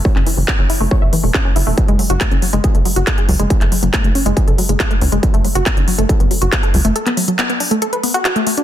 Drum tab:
HH |--o---o---o---o-|xxoxxxoxxxoxxxox|xxoxxxoxxxoxxxox|xxoxxxoxxxoxxxox|
CP |-x--x-------x---|----x-------x---|-x--x-------x---|----x-------x---|
BD |o---o---o---o---|o---o---o---o---|o---o---o---o---|o---o---o---o---|

HH |xxoxxxoxxxoxxxox|
CP |-x--x-------x---|
BD |----------------|